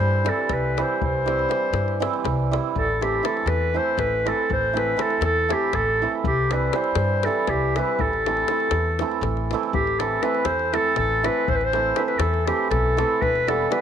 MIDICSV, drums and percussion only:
0, 0, Header, 1, 2, 480
1, 0, Start_track
1, 0, Key_signature, 0, "minor"
1, 0, Tempo, 498339
1, 976, Time_signature, 7, 3, 24, 8
1, 13304, End_track
2, 0, Start_track
2, 0, Title_t, "Davul"
2, 249, Note_on_c, 9, 37, 69
2, 346, Note_off_c, 9, 37, 0
2, 476, Note_on_c, 9, 37, 57
2, 476, Note_on_c, 9, 43, 55
2, 572, Note_off_c, 9, 37, 0
2, 572, Note_off_c, 9, 43, 0
2, 750, Note_on_c, 9, 37, 60
2, 846, Note_off_c, 9, 37, 0
2, 978, Note_on_c, 9, 43, 89
2, 1074, Note_off_c, 9, 43, 0
2, 1230, Note_on_c, 9, 37, 55
2, 1326, Note_off_c, 9, 37, 0
2, 1341, Note_on_c, 9, 37, 22
2, 1437, Note_off_c, 9, 37, 0
2, 1453, Note_on_c, 9, 37, 60
2, 1550, Note_off_c, 9, 37, 0
2, 1672, Note_on_c, 9, 37, 63
2, 1768, Note_off_c, 9, 37, 0
2, 1811, Note_on_c, 9, 37, 23
2, 1907, Note_off_c, 9, 37, 0
2, 1948, Note_on_c, 9, 37, 66
2, 2044, Note_off_c, 9, 37, 0
2, 2057, Note_on_c, 9, 37, 26
2, 2153, Note_off_c, 9, 37, 0
2, 2171, Note_on_c, 9, 37, 63
2, 2171, Note_on_c, 9, 43, 59
2, 2267, Note_off_c, 9, 37, 0
2, 2267, Note_off_c, 9, 43, 0
2, 2441, Note_on_c, 9, 37, 57
2, 2537, Note_off_c, 9, 37, 0
2, 2658, Note_on_c, 9, 43, 73
2, 2754, Note_off_c, 9, 43, 0
2, 2913, Note_on_c, 9, 37, 59
2, 3010, Note_off_c, 9, 37, 0
2, 3129, Note_on_c, 9, 37, 66
2, 3226, Note_off_c, 9, 37, 0
2, 3244, Note_on_c, 9, 37, 22
2, 3341, Note_off_c, 9, 37, 0
2, 3346, Note_on_c, 9, 37, 68
2, 3443, Note_off_c, 9, 37, 0
2, 3839, Note_on_c, 9, 37, 63
2, 3839, Note_on_c, 9, 43, 55
2, 3936, Note_off_c, 9, 37, 0
2, 3936, Note_off_c, 9, 43, 0
2, 4109, Note_on_c, 9, 37, 59
2, 4206, Note_off_c, 9, 37, 0
2, 4341, Note_on_c, 9, 43, 77
2, 4437, Note_off_c, 9, 43, 0
2, 4594, Note_on_c, 9, 37, 56
2, 4690, Note_off_c, 9, 37, 0
2, 4807, Note_on_c, 9, 37, 68
2, 4903, Note_off_c, 9, 37, 0
2, 4916, Note_on_c, 9, 37, 25
2, 5012, Note_off_c, 9, 37, 0
2, 5028, Note_on_c, 9, 37, 75
2, 5125, Note_off_c, 9, 37, 0
2, 5302, Note_on_c, 9, 37, 70
2, 5398, Note_off_c, 9, 37, 0
2, 5521, Note_on_c, 9, 37, 66
2, 5521, Note_on_c, 9, 43, 61
2, 5617, Note_off_c, 9, 37, 0
2, 5617, Note_off_c, 9, 43, 0
2, 6012, Note_on_c, 9, 43, 94
2, 6108, Note_off_c, 9, 43, 0
2, 6268, Note_on_c, 9, 37, 64
2, 6364, Note_off_c, 9, 37, 0
2, 6483, Note_on_c, 9, 37, 72
2, 6580, Note_off_c, 9, 37, 0
2, 6587, Note_on_c, 9, 37, 27
2, 6684, Note_off_c, 9, 37, 0
2, 6699, Note_on_c, 9, 37, 82
2, 6795, Note_off_c, 9, 37, 0
2, 6966, Note_on_c, 9, 37, 68
2, 7062, Note_off_c, 9, 37, 0
2, 7200, Note_on_c, 9, 37, 62
2, 7200, Note_on_c, 9, 43, 58
2, 7296, Note_off_c, 9, 37, 0
2, 7296, Note_off_c, 9, 43, 0
2, 7473, Note_on_c, 9, 37, 61
2, 7569, Note_off_c, 9, 37, 0
2, 7701, Note_on_c, 9, 43, 91
2, 7797, Note_off_c, 9, 43, 0
2, 7834, Note_on_c, 9, 37, 23
2, 7930, Note_off_c, 9, 37, 0
2, 7960, Note_on_c, 9, 37, 65
2, 8056, Note_off_c, 9, 37, 0
2, 8061, Note_on_c, 9, 37, 25
2, 8158, Note_off_c, 9, 37, 0
2, 8168, Note_on_c, 9, 37, 68
2, 8265, Note_off_c, 9, 37, 0
2, 8285, Note_on_c, 9, 37, 24
2, 8382, Note_off_c, 9, 37, 0
2, 8389, Note_on_c, 9, 37, 70
2, 8485, Note_off_c, 9, 37, 0
2, 8660, Note_on_c, 9, 37, 67
2, 8756, Note_off_c, 9, 37, 0
2, 8780, Note_on_c, 9, 37, 22
2, 8876, Note_off_c, 9, 37, 0
2, 8889, Note_on_c, 9, 37, 57
2, 8889, Note_on_c, 9, 43, 53
2, 8986, Note_off_c, 9, 37, 0
2, 8986, Note_off_c, 9, 43, 0
2, 9025, Note_on_c, 9, 37, 24
2, 9121, Note_off_c, 9, 37, 0
2, 9157, Note_on_c, 9, 37, 57
2, 9254, Note_off_c, 9, 37, 0
2, 9279, Note_on_c, 9, 37, 23
2, 9375, Note_off_c, 9, 37, 0
2, 9384, Note_on_c, 9, 43, 92
2, 9481, Note_off_c, 9, 43, 0
2, 9510, Note_on_c, 9, 37, 25
2, 9606, Note_off_c, 9, 37, 0
2, 9631, Note_on_c, 9, 37, 65
2, 9727, Note_off_c, 9, 37, 0
2, 9851, Note_on_c, 9, 37, 59
2, 9947, Note_off_c, 9, 37, 0
2, 9964, Note_on_c, 9, 37, 25
2, 10061, Note_off_c, 9, 37, 0
2, 10065, Note_on_c, 9, 37, 72
2, 10162, Note_off_c, 9, 37, 0
2, 10204, Note_on_c, 9, 37, 23
2, 10300, Note_off_c, 9, 37, 0
2, 10341, Note_on_c, 9, 37, 64
2, 10437, Note_off_c, 9, 37, 0
2, 10558, Note_on_c, 9, 37, 59
2, 10558, Note_on_c, 9, 43, 57
2, 10655, Note_off_c, 9, 37, 0
2, 10655, Note_off_c, 9, 43, 0
2, 10831, Note_on_c, 9, 37, 62
2, 10927, Note_off_c, 9, 37, 0
2, 11057, Note_on_c, 9, 43, 91
2, 11154, Note_off_c, 9, 43, 0
2, 11183, Note_on_c, 9, 37, 23
2, 11279, Note_off_c, 9, 37, 0
2, 11302, Note_on_c, 9, 37, 55
2, 11398, Note_off_c, 9, 37, 0
2, 11521, Note_on_c, 9, 37, 65
2, 11617, Note_off_c, 9, 37, 0
2, 11637, Note_on_c, 9, 37, 25
2, 11734, Note_off_c, 9, 37, 0
2, 11747, Note_on_c, 9, 37, 78
2, 11843, Note_off_c, 9, 37, 0
2, 11883, Note_on_c, 9, 37, 22
2, 11980, Note_off_c, 9, 37, 0
2, 12016, Note_on_c, 9, 37, 68
2, 12112, Note_off_c, 9, 37, 0
2, 12247, Note_on_c, 9, 37, 57
2, 12247, Note_on_c, 9, 43, 60
2, 12343, Note_off_c, 9, 37, 0
2, 12343, Note_off_c, 9, 43, 0
2, 12507, Note_on_c, 9, 37, 61
2, 12603, Note_off_c, 9, 37, 0
2, 12732, Note_on_c, 9, 43, 83
2, 12828, Note_off_c, 9, 43, 0
2, 12864, Note_on_c, 9, 37, 25
2, 12960, Note_off_c, 9, 37, 0
2, 12988, Note_on_c, 9, 37, 63
2, 13084, Note_off_c, 9, 37, 0
2, 13213, Note_on_c, 9, 37, 70
2, 13304, Note_off_c, 9, 37, 0
2, 13304, End_track
0, 0, End_of_file